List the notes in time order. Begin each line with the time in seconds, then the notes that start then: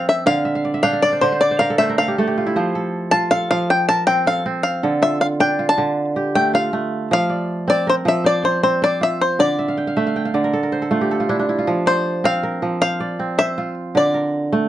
Already playing: F3 C4 A4 A#4
0.09 E5
0.26 D3 F5
0.45 E5
0.55 F5
0.65 D5
0.74 E5
0.83 D4 F5 G5
0.93 F5
1.02 D5
1.12 C5
1.21 D3 C5 D5
1.32 C5
1.41 D5
1.51 C5
1.59 A#4 F5
1.70 A4
1.78 A3 C5 E5
1.89 A#4
1.98 A4 F5
2.08 G4
2.18 A3 A4
2.27 G4
2.38 F4
2.46 E4
2.56 F3 C5
2.75 A4
3.11 F4 A5
3.31 A4 F5
3.51 F3 F5
3.70 G5
3.89 A#4 A5
4.07 C4 G5
4.26 A4 F5
4.46 C4
4.63 F5
4.83 D3 A4
5.02 F4 E5
5.21 F5
5.40 D4 G5
5.59 F4
5.69 A5
5.78 D3
6.16 G4
6.35 A3 G5
6.53 F4 F5
6.73 A3
7.11 F3 F5
7.30 D5
7.68 C4 D5
7.87 A#4 C5
8.05 F3 E5
8.24 C5 D5
8.43 C5 D5
8.63 C4 C5
8.82 C5 D5
9.01 F4 E5
9.21 C5
9.39 D3 D5
9.59 E5
9.68 F5
9.77 G5
9.87 F5
9.97 A3 E5
10.07 F5
10.16 G5
10.25 F5
10.34 D3 D5
10.44 A#4
10.53 A4
10.63 A#4
10.72 C5
10.82 A4
10.91 A3 F4
11.01 G4
11.11 A4
11.20 F4
11.29 D4 E4
11.39 D4
11.49 E4
11.58 F4
11.67 F3
11.86 C5 D5
12.24 C4 F5
12.43 A#4
12.62 F3
12.81 C5 F5
13.00 D5
13.19 C4
13.38 C5 E5
13.58 F4
13.95 D3 D5
14.14 A#4
14.52 A3